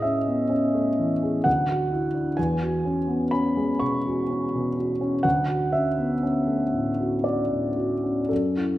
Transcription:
0, 0, Header, 1, 2, 480
1, 0, Start_track
1, 0, Tempo, 934579
1, 1219, Time_signature, 3, 2, 24, 8
1, 1704, Tempo, 964630
1, 2664, Tempo, 983607
1, 3144, Tempo, 1039861
1, 4321, End_track
2, 0, Start_track
2, 0, Title_t, "Grand piano"
2, 0, Program_c, 0, 0
2, 0, Control_c, 0, 64, 127
2, 0, Note_on_c, 0, 45, 42
2, 0, Note_on_c, 0, 68, 30
2, 0, Note_on_c, 0, 75, 66
2, 12, Note_on_c, 0, 76, 52
2, 20, Note_on_c, 0, 61, 34
2, 90, Note_off_c, 0, 68, 0
2, 137, Note_on_c, 0, 59, 26
2, 218, Note_off_c, 0, 61, 0
2, 255, Note_on_c, 0, 61, 36
2, 264, Note_off_c, 0, 59, 0
2, 383, Note_on_c, 0, 57, 33
2, 455, Note_off_c, 0, 61, 0
2, 508, Note_on_c, 0, 52, 31
2, 578, Note_off_c, 0, 57, 0
2, 630, Note_on_c, 0, 68, 34
2, 700, Note_off_c, 0, 52, 0
2, 724, Note_off_c, 0, 45, 0
2, 739, Note_on_c, 0, 78, 64
2, 742, Note_off_c, 0, 76, 0
2, 747, Note_on_c, 0, 38, 39
2, 749, Note_off_c, 0, 68, 0
2, 758, Control_c, 0, 64, 0
2, 761, Note_off_c, 0, 75, 0
2, 844, Control_c, 0, 64, 127
2, 871, Note_on_c, 0, 66, 36
2, 987, Note_on_c, 0, 64, 33
2, 1057, Note_off_c, 0, 66, 0
2, 1102, Note_on_c, 0, 62, 28
2, 1173, Note_off_c, 0, 64, 0
2, 1204, Note_off_c, 0, 38, 0
2, 1215, Note_off_c, 0, 78, 0
2, 1216, Note_on_c, 0, 80, 67
2, 1219, Note_off_c, 0, 62, 0
2, 1226, Note_on_c, 0, 40, 42
2, 1228, Control_c, 0, 64, 0
2, 1312, Control_c, 0, 64, 127
2, 1346, Note_on_c, 0, 66, 33
2, 1464, Note_on_c, 0, 61, 31
2, 1534, Note_off_c, 0, 66, 0
2, 1579, Note_on_c, 0, 59, 30
2, 1656, Note_off_c, 0, 61, 0
2, 1701, Note_off_c, 0, 80, 0
2, 1701, Note_on_c, 0, 83, 63
2, 1703, Note_off_c, 0, 59, 0
2, 1706, Note_on_c, 0, 61, 37
2, 1829, Note_on_c, 0, 56, 33
2, 1901, Note_off_c, 0, 61, 0
2, 1942, Note_on_c, 0, 85, 64
2, 1947, Note_off_c, 0, 83, 0
2, 1952, Note_on_c, 0, 47, 30
2, 2024, Note_off_c, 0, 56, 0
2, 2076, Note_on_c, 0, 66, 31
2, 2145, Note_off_c, 0, 47, 0
2, 2192, Note_on_c, 0, 61, 33
2, 2265, Note_off_c, 0, 66, 0
2, 2315, Note_on_c, 0, 47, 33
2, 2381, Note_off_c, 0, 61, 0
2, 2424, Note_off_c, 0, 85, 0
2, 2426, Note_on_c, 0, 66, 33
2, 2500, Note_off_c, 0, 47, 0
2, 2546, Note_on_c, 0, 61, 35
2, 2615, Note_off_c, 0, 66, 0
2, 2647, Note_off_c, 0, 40, 0
2, 2655, Note_on_c, 0, 78, 62
2, 2663, Note_on_c, 0, 38, 41
2, 2664, Note_off_c, 0, 61, 0
2, 2671, Control_c, 0, 64, 0
2, 2750, Control_c, 0, 64, 127
2, 2781, Note_on_c, 0, 66, 31
2, 2897, Note_off_c, 0, 78, 0
2, 2898, Note_on_c, 0, 76, 58
2, 2903, Note_on_c, 0, 61, 31
2, 2974, Note_off_c, 0, 66, 0
2, 3024, Note_on_c, 0, 59, 26
2, 3096, Note_off_c, 0, 61, 0
2, 3145, Note_off_c, 0, 59, 0
2, 3145, Note_on_c, 0, 61, 30
2, 3256, Note_on_c, 0, 57, 30
2, 3331, Note_off_c, 0, 61, 0
2, 3377, Note_on_c, 0, 45, 31
2, 3447, Note_off_c, 0, 57, 0
2, 3500, Note_on_c, 0, 66, 31
2, 3568, Note_off_c, 0, 45, 0
2, 3610, Note_on_c, 0, 74, 49
2, 3615, Note_off_c, 0, 76, 0
2, 3615, Note_on_c, 0, 61, 28
2, 3690, Note_off_c, 0, 66, 0
2, 3737, Note_on_c, 0, 45, 29
2, 3808, Note_off_c, 0, 61, 0
2, 3854, Note_on_c, 0, 66, 29
2, 3930, Note_off_c, 0, 45, 0
2, 3978, Note_on_c, 0, 61, 28
2, 4050, Note_off_c, 0, 66, 0
2, 4081, Note_off_c, 0, 38, 0
2, 4094, Note_on_c, 0, 69, 46
2, 4097, Note_off_c, 0, 74, 0
2, 4100, Note_off_c, 0, 61, 0
2, 4102, Note_on_c, 0, 42, 31
2, 4110, Control_c, 0, 64, 0
2, 4210, Control_c, 0, 64, 127
2, 4224, Note_on_c, 0, 64, 24
2, 4321, Note_off_c, 0, 42, 0
2, 4321, Note_off_c, 0, 64, 0
2, 4321, Note_off_c, 0, 69, 0
2, 4321, End_track
0, 0, End_of_file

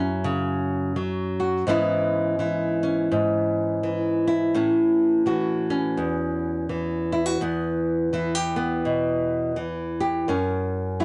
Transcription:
0, 0, Header, 1, 2, 480
1, 0, Start_track
1, 0, Tempo, 716589
1, 1126, Time_signature, 4, 2, 24, 8
1, 7399, End_track
2, 0, Start_track
2, 0, Title_t, "Nylon-string guitar"
2, 0, Program_c, 0, 24
2, 0, Note_on_c, 0, 42, 70
2, 0, Note_on_c, 0, 54, 58
2, 0, Note_on_c, 0, 61, 62
2, 0, Note_on_c, 0, 64, 57
2, 163, Note_on_c, 0, 49, 66
2, 635, Note_off_c, 0, 54, 0
2, 643, Note_on_c, 0, 54, 57
2, 644, Note_off_c, 0, 49, 0
2, 933, Note_off_c, 0, 64, 0
2, 936, Note_on_c, 0, 66, 59
2, 1099, Note_off_c, 0, 42, 0
2, 1102, Note_off_c, 0, 54, 0
2, 1103, Note_off_c, 0, 66, 0
2, 1117, Note_on_c, 0, 44, 75
2, 1123, Note_on_c, 0, 52, 62
2, 1129, Note_on_c, 0, 59, 60
2, 1130, Note_off_c, 0, 61, 0
2, 1132, Note_on_c, 0, 61, 60
2, 1136, Note_on_c, 0, 64, 68
2, 1598, Note_off_c, 0, 52, 0
2, 1600, Note_on_c, 0, 52, 58
2, 1604, Note_off_c, 0, 64, 0
2, 1607, Note_on_c, 0, 64, 52
2, 1893, Note_off_c, 0, 61, 0
2, 1896, Note_on_c, 0, 61, 63
2, 2079, Note_off_c, 0, 44, 0
2, 2087, Note_on_c, 0, 44, 67
2, 2565, Note_off_c, 0, 52, 0
2, 2568, Note_on_c, 0, 52, 58
2, 2861, Note_off_c, 0, 64, 0
2, 2863, Note_on_c, 0, 64, 59
2, 3023, Note_off_c, 0, 44, 0
2, 3023, Note_off_c, 0, 61, 0
2, 3024, Note_off_c, 0, 59, 0
2, 3045, Note_on_c, 0, 45, 78
2, 3048, Note_on_c, 0, 61, 63
2, 3520, Note_off_c, 0, 52, 0
2, 3522, Note_on_c, 0, 52, 55
2, 3525, Note_off_c, 0, 64, 0
2, 3528, Note_on_c, 0, 66, 58
2, 3811, Note_off_c, 0, 61, 0
2, 3819, Note_on_c, 0, 61, 62
2, 4002, Note_on_c, 0, 40, 63
2, 4005, Note_off_c, 0, 45, 0
2, 4480, Note_off_c, 0, 52, 0
2, 4483, Note_on_c, 0, 52, 55
2, 4769, Note_off_c, 0, 66, 0
2, 4772, Note_on_c, 0, 64, 59
2, 4861, Note_off_c, 0, 64, 0
2, 4861, Note_on_c, 0, 66, 52
2, 4945, Note_off_c, 0, 61, 0
2, 4956, Note_off_c, 0, 40, 0
2, 4961, Note_off_c, 0, 66, 0
2, 4964, Note_on_c, 0, 40, 73
2, 4969, Note_on_c, 0, 59, 58
2, 5442, Note_off_c, 0, 52, 0
2, 5444, Note_on_c, 0, 52, 59
2, 5450, Note_on_c, 0, 64, 57
2, 5592, Note_off_c, 0, 64, 0
2, 5592, Note_on_c, 0, 67, 51
2, 5727, Note_off_c, 0, 59, 0
2, 5735, Note_on_c, 0, 59, 60
2, 5929, Note_on_c, 0, 47, 65
2, 6402, Note_off_c, 0, 52, 0
2, 6405, Note_on_c, 0, 52, 60
2, 6407, Note_off_c, 0, 47, 0
2, 6694, Note_off_c, 0, 67, 0
2, 6702, Note_on_c, 0, 67, 59
2, 6866, Note_off_c, 0, 67, 0
2, 6883, Note_off_c, 0, 40, 0
2, 6886, Note_off_c, 0, 59, 0
2, 6886, Note_on_c, 0, 42, 75
2, 6892, Note_on_c, 0, 61, 65
2, 6906, Note_off_c, 0, 52, 0
2, 7367, Note_on_c, 0, 54, 61
2, 7370, Note_on_c, 0, 64, 58
2, 7399, Note_off_c, 0, 42, 0
2, 7399, Note_off_c, 0, 54, 0
2, 7399, Note_off_c, 0, 61, 0
2, 7399, Note_off_c, 0, 64, 0
2, 7399, End_track
0, 0, End_of_file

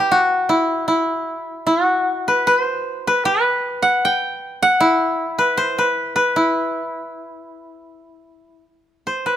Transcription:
0, 0, Header, 1, 2, 480
1, 0, Start_track
1, 0, Tempo, 784314
1, 57, Time_signature, 2, 2, 24, 8
1, 1979, Tempo, 770218
1, 4379, Tempo, 788436
1, 5768, End_track
2, 0, Start_track
2, 0, Title_t, "Koto"
2, 0, Program_c, 0, 107
2, 0, Note_on_c, 0, 64, 89
2, 0, Note_on_c, 0, 67, 72
2, 0, Note_on_c, 0, 71, 88
2, 70, Note_on_c, 0, 66, 91
2, 107, Note_off_c, 0, 67, 0
2, 298, Note_off_c, 0, 64, 0
2, 301, Note_on_c, 0, 64, 75
2, 535, Note_off_c, 0, 64, 0
2, 537, Note_on_c, 0, 64, 75
2, 685, Note_off_c, 0, 71, 0
2, 1017, Note_off_c, 0, 66, 0
2, 1019, Note_on_c, 0, 66, 85
2, 1394, Note_on_c, 0, 71, 82
2, 1511, Note_off_c, 0, 71, 0
2, 1511, Note_on_c, 0, 71, 88
2, 1591, Note_off_c, 0, 71, 0
2, 1591, Note_on_c, 0, 72, 88
2, 1881, Note_on_c, 0, 71, 83
2, 1918, Note_off_c, 0, 72, 0
2, 1922, Note_off_c, 0, 64, 0
2, 1988, Note_off_c, 0, 71, 0
2, 1991, Note_on_c, 0, 71, 99
2, 2318, Note_off_c, 0, 66, 0
2, 2347, Note_on_c, 0, 78, 89
2, 2487, Note_on_c, 0, 79, 95
2, 2524, Note_off_c, 0, 78, 0
2, 2846, Note_on_c, 0, 78, 99
2, 2883, Note_off_c, 0, 79, 0
2, 2958, Note_on_c, 0, 64, 99
2, 3098, Note_off_c, 0, 71, 0
2, 3320, Note_on_c, 0, 71, 85
2, 3438, Note_on_c, 0, 72, 92
2, 3475, Note_off_c, 0, 71, 0
2, 3569, Note_on_c, 0, 71, 84
2, 3606, Note_off_c, 0, 72, 0
2, 3714, Note_off_c, 0, 78, 0
2, 3798, Note_off_c, 0, 71, 0
2, 3801, Note_on_c, 0, 71, 87
2, 3926, Note_off_c, 0, 64, 0
2, 3928, Note_on_c, 0, 64, 82
2, 4895, Note_off_c, 0, 71, 0
2, 5317, Note_off_c, 0, 64, 0
2, 5586, Note_on_c, 0, 72, 65
2, 5703, Note_on_c, 0, 71, 68
2, 5739, Note_off_c, 0, 72, 0
2, 5768, Note_off_c, 0, 71, 0
2, 5768, End_track
0, 0, End_of_file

